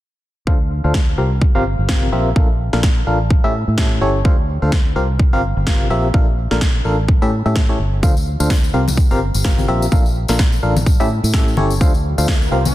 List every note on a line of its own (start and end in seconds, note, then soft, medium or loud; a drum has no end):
0.47 0.81 D2 medium
0.47 0.59 D3 medium
0.47 0.59 D4 medium
0.47 0.59 F4 medium
0.47 0.59 A4 medium
0.47 0.59 C5 medium
0.47 0.59 F5 medium
0.47 kick loud
0.84 1.15 D2 medium
0.84 0.99 D3 medium
0.84 0.99 D4 medium
0.84 0.99 F4 medium
0.84 0.99 A4 medium
0.84 0.99 C5 medium
0.84 0.99 F5 medium
0.94 kick loud
0.94 snare loud
1.18 1.52 C2 medium
1.18 1.29 C3 medium
1.18 1.29 C4 medium
1.18 1.29 F4 medium
1.18 1.29 G4 medium
1.18 1.29 A#4 medium
1.18 1.29 F5 medium
1.42 kick loud
1.55 1.75 G1 medium
1.55 1.64 C3 medium
1.55 1.64 C4 medium
1.55 1.64 F4 medium
1.55 1.64 G4 medium
1.55 1.64 A#4 medium
1.55 1.64 F5 loud
1.79 2.10 G1 medium
1.89 2.10 C3 medium
1.89 2.10 C4 medium
1.89 2.10 F4 medium
1.89 2.10 G4 medium
1.89 2.10 A#4 medium
1.89 2.10 F5 medium
1.89 kick loud
1.89 snare loud
2.12 2.33 A#1 medium
2.12 2.30 C4 medium
2.12 2.30 F4 medium
2.12 2.30 G4 medium
2.12 2.30 A#4 medium
2.12 2.30 E5 medium
2.36 2.70 A#1 medium
2.36 2.48 A#2 medium
2.36 2.48 D4 medium
2.36 2.48 F4 medium
2.36 2.48 A4 medium
2.36 2.48 A#4 medium
2.36 2.48 F5 medium
2.36 kick loud
2.73 3.04 A#1 medium
2.73 2.88 A#2 medium
2.73 2.88 D4 medium
2.73 2.88 F4 medium
2.73 2.88 A4 medium
2.73 2.88 A#4 medium
2.73 2.88 F5 medium
2.73 snare soft
2.83 kick loud
2.83 snare loud
3.07 3.41 A1 medium
3.07 3.18 D4 medium
3.07 3.18 F4 medium
3.07 3.18 A4 medium
3.07 3.18 A#4 medium
3.07 3.18 F5 medium
3.30 kick loud
3.44 3.53 A2 medium
3.44 3.64 A2 medium
3.44 3.53 C#4 medium
3.44 3.53 E4 medium
3.44 3.53 G4 medium
3.44 3.53 A4 medium
3.44 3.53 E5 medium
3.68 3.99 A2 medium
3.78 3.99 A2 medium
3.78 3.99 C#4 medium
3.78 3.99 E4 medium
3.78 3.99 G4 medium
3.78 3.99 A4 medium
3.78 3.99 E5 medium
3.78 kick loud
3.78 snare loud
4.01 4.22 G1 medium
4.01 4.19 C#4 medium
4.01 4.19 E4 medium
4.01 4.19 G4 medium
4.01 4.19 A4 medium
4.01 4.19 C#5 medium
4.25 4.59 D2 medium
4.25 4.36 D3 medium
4.25 4.36 D4 medium
4.25 4.36 F4 medium
4.25 4.36 A4 medium
4.25 4.36 C5 medium
4.25 4.36 F5 medium
4.25 kick loud
4.62 4.93 D2 medium
4.62 4.77 D3 medium
4.62 4.77 D4 medium
4.62 4.77 F4 medium
4.62 4.77 A4 medium
4.62 4.77 C5 medium
4.62 4.77 F5 medium
4.72 kick loud
4.72 snare loud
4.96 5.30 C2 medium
4.96 5.07 C3 medium
4.96 5.07 C4 medium
4.96 5.07 F4 medium
4.96 5.07 G4 medium
4.96 5.07 A#4 medium
4.96 5.07 F5 medium
5.19 kick loud
5.33 5.53 G1 medium
5.33 5.42 C3 medium
5.33 5.42 C4 medium
5.33 5.42 F4 medium
5.33 5.42 G4 medium
5.33 5.42 A#4 medium
5.33 5.42 F5 medium
5.57 5.88 G1 medium
5.67 5.88 C3 medium
5.67 5.88 C4 medium
5.67 5.88 F4 medium
5.67 5.88 G4 medium
5.67 5.88 A#4 medium
5.67 5.88 F5 medium
5.67 kick loud
5.67 snare loud
5.90 6.11 A#1 medium
5.90 6.08 C4 medium
5.90 6.08 F4 medium
5.90 6.08 G4 medium
5.90 6.08 A#4 medium
5.90 6.08 E5 medium
6.14 6.25 A#2 medium
6.14 6.25 D4 medium
6.14 6.25 F4 medium
6.14 6.25 A4 medium
6.14 6.25 A#4 medium
6.14 6.25 F5 medium
6.14 kick loud
6.51 6.82 A#1 medium
6.51 6.66 A#2 medium
6.51 6.66 D4 medium
6.51 6.66 F4 medium
6.51 6.66 A4 medium
6.51 6.66 A#4 medium
6.51 6.66 F5 medium
6.51 snare soft
6.61 kick loud
6.61 snare loud
6.85 7.19 A1 medium
6.85 6.96 D4 medium
6.85 6.96 F4 medium
6.85 6.96 A4 medium
6.85 6.96 A#4 medium
6.85 6.96 F5 medium
7.08 kick loud
7.22 7.31 A2 medium
7.22 7.42 A2 medium
7.22 7.31 C#4 medium
7.22 7.31 E4 medium
7.22 7.31 G4 medium
7.22 7.31 A4 medium
7.22 7.31 E5 loud
7.46 7.77 A2 medium
7.46 7.61 A2 medium
7.46 7.61 C#4 medium
7.46 7.61 E4 medium
7.46 7.61 G4 medium
7.46 7.61 A4 medium
7.46 7.61 E5 medium
7.56 kick loud
7.56 snare loud
7.69 7.78 A2 medium
7.69 7.78 C#4 medium
7.69 7.78 E4 medium
7.69 7.78 G4 medium
7.69 7.78 A4 medium
7.69 7.78 C#5 medium
7.79 8.00 G1 medium
8.03 8.37 D2 medium
8.03 8.14 D3 medium
8.03 8.14 D4 medium
8.03 8.14 F4 medium
8.03 8.14 A4 medium
8.03 8.14 C5 medium
8.03 8.14 F5 medium
8.03 kick loud
8.03 tambourine medium
8.17 tambourine soft
8.40 8.71 D2 medium
8.40 8.55 D3 medium
8.40 8.55 D4 medium
8.40 8.55 F4 medium
8.40 8.55 A4 medium
8.40 8.55 C5 medium
8.40 8.55 F5 medium
8.40 tambourine medium
8.50 kick loud
8.50 snare loud
8.50 tambourine medium
8.64 tambourine soft
8.74 9.08 C2 medium
8.74 8.85 C3 medium
8.74 8.85 C4 medium
8.74 8.85 F4 medium
8.74 8.85 G4 medium
8.74 8.85 A#4 medium
8.74 8.85 F5 medium
8.88 tambourine medium
8.88 high conga medium
8.97 kick loud
8.97 tambourine medium
9.11 9.30 G1 medium
9.11 9.20 C3 medium
9.11 9.20 C4 medium
9.11 9.20 F4 medium
9.11 9.20 G4 medium
9.11 9.20 A#4 medium
9.11 9.20 F5 loud
9.11 tambourine soft
9.34 9.66 G1 medium
9.34 tambourine medium
9.45 9.66 C3 medium
9.45 9.66 C4 medium
9.45 9.66 F4 medium
9.45 9.66 G4 medium
9.45 9.66 A#4 medium
9.45 9.66 F5 medium
9.45 kick loud
9.45 snare loud
9.58 tambourine soft
9.58 high conga medium
9.68 9.89 A#1 medium
9.68 9.85 C4 medium
9.68 9.86 F4 medium
9.68 9.85 G4 medium
9.68 9.85 A#4 medium
9.68 9.85 E5 medium
9.82 tambourine medium
9.92 10.03 A#2 medium
9.92 10.03 D4 medium
9.92 10.03 F4 medium
9.92 10.03 A4 medium
9.92 10.03 A#4 medium
9.92 10.03 F5 medium
9.92 kick loud
9.92 tambourine medium
10.06 tambourine soft
10.28 10.60 A#1 medium
10.28 10.44 A#2 medium
10.28 10.44 D4 medium
10.28 10.44 F4 medium
10.28 10.44 A4 medium
10.28 10.44 A#4 medium
10.28 10.44 F5 medium
10.28 snare soft
10.28 tambourine medium
10.39 kick loud
10.39 snare loud
10.39 tambourine medium
10.52 tambourine soft
10.63 10.97 A1 medium
10.63 10.74 D4 medium
10.63 10.74 F4 medium
10.63 10.74 A4 medium
10.63 10.74 A#4 medium
10.63 10.74 F5 medium
10.76 tambourine medium
10.76 high conga medium
10.86 kick loud
10.86 tambourine medium
11.00 11.09 A2 medium
11.00 11.19 A2 medium
11.00 11.09 C#4 medium
11.00 11.09 E4 medium
11.00 11.09 G4 medium
11.00 11.09 A4 medium
11.00 11.09 E5 loud
11.00 tambourine soft
11.24 11.55 A2 medium
11.24 tambourine medium
11.34 11.55 A2 medium
11.34 11.55 C#4 medium
11.34 11.55 E4 medium
11.34 11.55 G4 medium
11.34 11.55 A4 medium
11.34 11.55 E5 medium
11.34 kick loud
11.34 snare loud
11.48 tambourine soft
11.57 11.78 G1 medium
11.57 11.74 C#4 medium
11.57 11.74 E4 medium
11.57 11.74 G4 medium
11.57 11.74 A4 medium
11.57 11.74 C#5 medium
11.57 high conga medium
11.70 tambourine medium
11.81 12.15 D2 medium
11.81 11.92 D3 medium
11.81 11.92 D4 medium
11.81 11.92 F4 medium
11.81 11.92 A4 medium
11.81 11.92 C5 medium
11.81 11.92 F5 medium
11.81 kick loud
11.81 tambourine medium
11.81 riser medium
11.94 tambourine soft
12.18 12.49 D2 medium
12.18 12.33 D3 medium
12.18 12.33 D4 medium
12.18 12.33 F4 medium
12.18 12.33 A4 medium
12.18 12.33 C5 medium
12.18 12.33 F5 medium
12.18 tambourine medium
12.28 kick loud
12.28 snare loud
12.42 tambourine soft
12.52 12.75 C2 medium
12.52 12.63 C3 medium
12.52 12.63 C4 medium
12.52 12.63 F4 medium
12.52 12.63 G4 medium
12.52 12.63 A#4 medium
12.52 12.63 F5 medium
12.65 tambourine medium
12.65 high conga medium